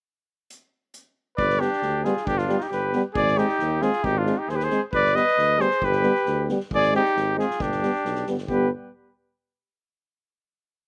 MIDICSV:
0, 0, Header, 1, 7, 480
1, 0, Start_track
1, 0, Tempo, 442152
1, 546, Time_signature, 2, 2, 24, 8
1, 11803, End_track
2, 0, Start_track
2, 0, Title_t, "Flugelhorn"
2, 0, Program_c, 0, 56
2, 1492, Note_on_c, 0, 74, 91
2, 1737, Note_on_c, 0, 67, 89
2, 1753, Note_off_c, 0, 74, 0
2, 2213, Note_on_c, 0, 68, 78
2, 2229, Note_off_c, 0, 67, 0
2, 2468, Note_on_c, 0, 67, 98
2, 2484, Note_off_c, 0, 68, 0
2, 2582, Note_on_c, 0, 65, 81
2, 2598, Note_off_c, 0, 67, 0
2, 2850, Note_on_c, 0, 67, 64
2, 2867, Note_off_c, 0, 65, 0
2, 2954, Note_off_c, 0, 67, 0
2, 2959, Note_on_c, 0, 71, 77
2, 3288, Note_off_c, 0, 71, 0
2, 3429, Note_on_c, 0, 74, 102
2, 3673, Note_on_c, 0, 67, 90
2, 3689, Note_off_c, 0, 74, 0
2, 4149, Note_on_c, 0, 68, 90
2, 4166, Note_off_c, 0, 67, 0
2, 4391, Note_on_c, 0, 67, 100
2, 4408, Note_off_c, 0, 68, 0
2, 4537, Note_on_c, 0, 65, 82
2, 4554, Note_off_c, 0, 67, 0
2, 4758, Note_on_c, 0, 67, 67
2, 4775, Note_off_c, 0, 65, 0
2, 4886, Note_on_c, 0, 72, 72
2, 4902, Note_off_c, 0, 67, 0
2, 4954, Note_on_c, 0, 71, 75
2, 4970, Note_off_c, 0, 72, 0
2, 5033, Note_on_c, 0, 72, 80
2, 5050, Note_off_c, 0, 71, 0
2, 5236, Note_off_c, 0, 72, 0
2, 5377, Note_on_c, 0, 74, 104
2, 5595, Note_on_c, 0, 75, 115
2, 5611, Note_off_c, 0, 74, 0
2, 6090, Note_on_c, 0, 72, 98
2, 6106, Note_off_c, 0, 75, 0
2, 6345, Note_on_c, 0, 71, 92
2, 6362, Note_off_c, 0, 72, 0
2, 7055, Note_off_c, 0, 71, 0
2, 7325, Note_on_c, 0, 74, 114
2, 7529, Note_off_c, 0, 74, 0
2, 7555, Note_on_c, 0, 67, 102
2, 7988, Note_off_c, 0, 67, 0
2, 8022, Note_on_c, 0, 68, 77
2, 8271, Note_on_c, 0, 67, 78
2, 8287, Note_off_c, 0, 68, 0
2, 8979, Note_off_c, 0, 67, 0
2, 9228, Note_on_c, 0, 71, 69
2, 9441, Note_off_c, 0, 71, 0
2, 11803, End_track
3, 0, Start_track
3, 0, Title_t, "Trumpet"
3, 0, Program_c, 1, 56
3, 1487, Note_on_c, 1, 71, 78
3, 1734, Note_on_c, 1, 62, 68
3, 1750, Note_off_c, 1, 71, 0
3, 2226, Note_on_c, 1, 65, 53
3, 2242, Note_off_c, 1, 62, 0
3, 2448, Note_on_c, 1, 62, 80
3, 2464, Note_off_c, 1, 65, 0
3, 2569, Note_off_c, 1, 62, 0
3, 2569, Note_on_c, 1, 62, 63
3, 2805, Note_on_c, 1, 63, 57
3, 2821, Note_off_c, 1, 62, 0
3, 2911, Note_off_c, 1, 63, 0
3, 2918, Note_on_c, 1, 67, 66
3, 3265, Note_off_c, 1, 67, 0
3, 3403, Note_on_c, 1, 68, 95
3, 3663, Note_on_c, 1, 63, 77
3, 3679, Note_off_c, 1, 68, 0
3, 4146, Note_on_c, 1, 65, 66
3, 4162, Note_off_c, 1, 63, 0
3, 4378, Note_on_c, 1, 63, 77
3, 4394, Note_off_c, 1, 65, 0
3, 4525, Note_on_c, 1, 62, 59
3, 4542, Note_off_c, 1, 63, 0
3, 4749, Note_on_c, 1, 63, 55
3, 4765, Note_off_c, 1, 62, 0
3, 4878, Note_on_c, 1, 68, 69
3, 4895, Note_off_c, 1, 63, 0
3, 4939, Note_on_c, 1, 67, 58
3, 4955, Note_off_c, 1, 68, 0
3, 5031, Note_on_c, 1, 68, 70
3, 5047, Note_off_c, 1, 67, 0
3, 5235, Note_off_c, 1, 68, 0
3, 5351, Note_on_c, 1, 71, 92
3, 5590, Note_off_c, 1, 71, 0
3, 5590, Note_on_c, 1, 71, 80
3, 6069, Note_on_c, 1, 68, 69
3, 6085, Note_off_c, 1, 71, 0
3, 6318, Note_on_c, 1, 67, 97
3, 6334, Note_off_c, 1, 68, 0
3, 7041, Note_off_c, 1, 67, 0
3, 7316, Note_on_c, 1, 68, 96
3, 7524, Note_off_c, 1, 68, 0
3, 7573, Note_on_c, 1, 63, 65
3, 7998, Note_off_c, 1, 63, 0
3, 8025, Note_on_c, 1, 65, 62
3, 8257, Note_on_c, 1, 62, 82
3, 8273, Note_off_c, 1, 65, 0
3, 8972, Note_off_c, 1, 62, 0
3, 9201, Note_on_c, 1, 67, 70
3, 9427, Note_off_c, 1, 67, 0
3, 11803, End_track
4, 0, Start_track
4, 0, Title_t, "Euphonium"
4, 0, Program_c, 2, 58
4, 1740, Note_on_c, 2, 59, 52
4, 1836, Note_off_c, 2, 59, 0
4, 2211, Note_on_c, 2, 59, 58
4, 2309, Note_off_c, 2, 59, 0
4, 2702, Note_on_c, 2, 59, 55
4, 2798, Note_off_c, 2, 59, 0
4, 3186, Note_on_c, 2, 59, 65
4, 3281, Note_off_c, 2, 59, 0
4, 3655, Note_on_c, 2, 60, 58
4, 3752, Note_off_c, 2, 60, 0
4, 4139, Note_on_c, 2, 60, 61
4, 4236, Note_off_c, 2, 60, 0
4, 4634, Note_on_c, 2, 60, 57
4, 4729, Note_off_c, 2, 60, 0
4, 5110, Note_on_c, 2, 60, 51
4, 5206, Note_off_c, 2, 60, 0
4, 5586, Note_on_c, 2, 59, 62
4, 5684, Note_off_c, 2, 59, 0
4, 6074, Note_on_c, 2, 59, 55
4, 6171, Note_off_c, 2, 59, 0
4, 6554, Note_on_c, 2, 59, 71
4, 6651, Note_off_c, 2, 59, 0
4, 7038, Note_on_c, 2, 59, 64
4, 7135, Note_off_c, 2, 59, 0
4, 7519, Note_on_c, 2, 60, 64
4, 7617, Note_off_c, 2, 60, 0
4, 8006, Note_on_c, 2, 60, 54
4, 8102, Note_off_c, 2, 60, 0
4, 8499, Note_on_c, 2, 59, 55
4, 8593, Note_off_c, 2, 59, 0
4, 8991, Note_on_c, 2, 59, 56
4, 9082, Note_off_c, 2, 59, 0
4, 9219, Note_on_c, 2, 59, 64
4, 9436, Note_off_c, 2, 59, 0
4, 11803, End_track
5, 0, Start_track
5, 0, Title_t, "Euphonium"
5, 0, Program_c, 3, 58
5, 1733, Note_on_c, 3, 55, 49
5, 1831, Note_off_c, 3, 55, 0
5, 2223, Note_on_c, 3, 55, 62
5, 2318, Note_off_c, 3, 55, 0
5, 2690, Note_on_c, 3, 55, 65
5, 2788, Note_off_c, 3, 55, 0
5, 3195, Note_on_c, 3, 55, 63
5, 3288, Note_off_c, 3, 55, 0
5, 3658, Note_on_c, 3, 56, 59
5, 3755, Note_off_c, 3, 56, 0
5, 4143, Note_on_c, 3, 56, 62
5, 4239, Note_off_c, 3, 56, 0
5, 4622, Note_on_c, 3, 56, 56
5, 4719, Note_off_c, 3, 56, 0
5, 5111, Note_on_c, 3, 56, 53
5, 5207, Note_off_c, 3, 56, 0
5, 5569, Note_on_c, 3, 55, 50
5, 5670, Note_off_c, 3, 55, 0
5, 6057, Note_on_c, 3, 55, 64
5, 6157, Note_off_c, 3, 55, 0
5, 6546, Note_on_c, 3, 55, 58
5, 6645, Note_off_c, 3, 55, 0
5, 7060, Note_on_c, 3, 55, 58
5, 7153, Note_off_c, 3, 55, 0
5, 7513, Note_on_c, 3, 56, 52
5, 7612, Note_off_c, 3, 56, 0
5, 7992, Note_on_c, 3, 56, 55
5, 8091, Note_off_c, 3, 56, 0
5, 8490, Note_on_c, 3, 55, 51
5, 8586, Note_off_c, 3, 55, 0
5, 8972, Note_on_c, 3, 55, 47
5, 9067, Note_off_c, 3, 55, 0
5, 9232, Note_on_c, 3, 55, 49
5, 9443, Note_off_c, 3, 55, 0
5, 11803, End_track
6, 0, Start_track
6, 0, Title_t, "Tuba"
6, 0, Program_c, 4, 58
6, 1509, Note_on_c, 4, 31, 89
6, 1770, Note_off_c, 4, 31, 0
6, 1979, Note_on_c, 4, 38, 73
6, 2243, Note_off_c, 4, 38, 0
6, 2466, Note_on_c, 4, 31, 91
6, 2729, Note_off_c, 4, 31, 0
6, 2957, Note_on_c, 4, 31, 69
6, 3217, Note_off_c, 4, 31, 0
6, 3424, Note_on_c, 4, 32, 104
6, 3688, Note_off_c, 4, 32, 0
6, 3922, Note_on_c, 4, 39, 79
6, 4181, Note_off_c, 4, 39, 0
6, 4391, Note_on_c, 4, 32, 97
6, 4654, Note_off_c, 4, 32, 0
6, 4864, Note_on_c, 4, 39, 73
6, 5130, Note_off_c, 4, 39, 0
6, 5351, Note_on_c, 4, 31, 89
6, 5616, Note_off_c, 4, 31, 0
6, 5840, Note_on_c, 4, 38, 75
6, 6103, Note_off_c, 4, 38, 0
6, 6322, Note_on_c, 4, 31, 92
6, 6586, Note_off_c, 4, 31, 0
6, 6806, Note_on_c, 4, 38, 79
6, 7070, Note_off_c, 4, 38, 0
6, 7298, Note_on_c, 4, 32, 95
6, 7559, Note_off_c, 4, 32, 0
6, 7771, Note_on_c, 4, 32, 77
6, 8035, Note_off_c, 4, 32, 0
6, 8247, Note_on_c, 4, 31, 84
6, 8511, Note_off_c, 4, 31, 0
6, 8742, Note_on_c, 4, 35, 69
6, 8951, Note_off_c, 4, 35, 0
6, 8976, Note_on_c, 4, 31, 59
6, 9188, Note_off_c, 4, 31, 0
6, 9222, Note_on_c, 4, 31, 79
6, 9438, Note_off_c, 4, 31, 0
6, 11803, End_track
7, 0, Start_track
7, 0, Title_t, "Drums"
7, 546, Note_on_c, 9, 42, 49
7, 654, Note_off_c, 9, 42, 0
7, 1019, Note_on_c, 9, 42, 48
7, 1127, Note_off_c, 9, 42, 0
7, 1503, Note_on_c, 9, 36, 77
7, 1611, Note_off_c, 9, 36, 0
7, 1623, Note_on_c, 9, 38, 26
7, 1732, Note_off_c, 9, 38, 0
7, 1749, Note_on_c, 9, 38, 27
7, 1857, Note_off_c, 9, 38, 0
7, 1874, Note_on_c, 9, 38, 21
7, 1974, Note_off_c, 9, 38, 0
7, 1974, Note_on_c, 9, 38, 24
7, 2083, Note_off_c, 9, 38, 0
7, 2219, Note_on_c, 9, 38, 27
7, 2328, Note_off_c, 9, 38, 0
7, 2351, Note_on_c, 9, 38, 24
7, 2460, Note_off_c, 9, 38, 0
7, 2464, Note_on_c, 9, 36, 81
7, 2573, Note_off_c, 9, 36, 0
7, 2583, Note_on_c, 9, 38, 23
7, 2691, Note_off_c, 9, 38, 0
7, 2702, Note_on_c, 9, 38, 27
7, 2810, Note_off_c, 9, 38, 0
7, 2824, Note_on_c, 9, 38, 22
7, 2933, Note_off_c, 9, 38, 0
7, 2945, Note_on_c, 9, 38, 25
7, 3053, Note_off_c, 9, 38, 0
7, 3174, Note_on_c, 9, 38, 23
7, 3283, Note_off_c, 9, 38, 0
7, 3424, Note_on_c, 9, 36, 77
7, 3533, Note_off_c, 9, 36, 0
7, 3551, Note_on_c, 9, 38, 23
7, 3660, Note_off_c, 9, 38, 0
7, 3663, Note_on_c, 9, 38, 26
7, 3772, Note_off_c, 9, 38, 0
7, 3778, Note_on_c, 9, 38, 20
7, 3887, Note_off_c, 9, 38, 0
7, 3895, Note_on_c, 9, 38, 26
7, 4003, Note_off_c, 9, 38, 0
7, 4139, Note_on_c, 9, 38, 27
7, 4247, Note_off_c, 9, 38, 0
7, 4258, Note_on_c, 9, 38, 22
7, 4367, Note_off_c, 9, 38, 0
7, 4386, Note_on_c, 9, 36, 71
7, 4495, Note_off_c, 9, 36, 0
7, 4624, Note_on_c, 9, 38, 24
7, 4733, Note_off_c, 9, 38, 0
7, 4871, Note_on_c, 9, 38, 23
7, 4979, Note_off_c, 9, 38, 0
7, 4990, Note_on_c, 9, 38, 24
7, 5098, Note_off_c, 9, 38, 0
7, 5101, Note_on_c, 9, 38, 25
7, 5209, Note_off_c, 9, 38, 0
7, 5350, Note_on_c, 9, 36, 72
7, 5459, Note_off_c, 9, 36, 0
7, 5487, Note_on_c, 9, 38, 24
7, 5596, Note_off_c, 9, 38, 0
7, 5600, Note_on_c, 9, 38, 26
7, 5708, Note_off_c, 9, 38, 0
7, 5722, Note_on_c, 9, 38, 19
7, 5830, Note_off_c, 9, 38, 0
7, 5845, Note_on_c, 9, 38, 25
7, 5954, Note_off_c, 9, 38, 0
7, 6077, Note_on_c, 9, 38, 24
7, 6186, Note_off_c, 9, 38, 0
7, 6193, Note_on_c, 9, 38, 23
7, 6301, Note_off_c, 9, 38, 0
7, 6316, Note_on_c, 9, 36, 68
7, 6424, Note_off_c, 9, 36, 0
7, 6427, Note_on_c, 9, 38, 23
7, 6535, Note_off_c, 9, 38, 0
7, 6542, Note_on_c, 9, 38, 24
7, 6651, Note_off_c, 9, 38, 0
7, 6675, Note_on_c, 9, 38, 18
7, 6783, Note_off_c, 9, 38, 0
7, 6790, Note_on_c, 9, 38, 25
7, 6899, Note_off_c, 9, 38, 0
7, 7040, Note_on_c, 9, 38, 28
7, 7148, Note_off_c, 9, 38, 0
7, 7163, Note_on_c, 9, 38, 24
7, 7272, Note_off_c, 9, 38, 0
7, 7285, Note_on_c, 9, 36, 71
7, 7394, Note_off_c, 9, 36, 0
7, 7406, Note_on_c, 9, 38, 25
7, 7514, Note_off_c, 9, 38, 0
7, 7532, Note_on_c, 9, 38, 24
7, 7641, Note_off_c, 9, 38, 0
7, 7656, Note_on_c, 9, 38, 23
7, 7765, Note_off_c, 9, 38, 0
7, 7775, Note_on_c, 9, 38, 27
7, 7883, Note_off_c, 9, 38, 0
7, 8022, Note_on_c, 9, 38, 30
7, 8131, Note_off_c, 9, 38, 0
7, 8145, Note_on_c, 9, 38, 28
7, 8254, Note_off_c, 9, 38, 0
7, 8254, Note_on_c, 9, 36, 80
7, 8362, Note_off_c, 9, 36, 0
7, 8374, Note_on_c, 9, 38, 25
7, 8483, Note_off_c, 9, 38, 0
7, 8495, Note_on_c, 9, 38, 27
7, 8604, Note_off_c, 9, 38, 0
7, 8607, Note_on_c, 9, 38, 21
7, 8715, Note_off_c, 9, 38, 0
7, 8734, Note_on_c, 9, 38, 27
7, 8842, Note_off_c, 9, 38, 0
7, 8847, Note_on_c, 9, 38, 24
7, 8956, Note_off_c, 9, 38, 0
7, 8971, Note_on_c, 9, 38, 28
7, 9079, Note_off_c, 9, 38, 0
7, 9091, Note_on_c, 9, 38, 28
7, 9200, Note_off_c, 9, 38, 0
7, 9210, Note_on_c, 9, 36, 67
7, 9319, Note_off_c, 9, 36, 0
7, 11803, End_track
0, 0, End_of_file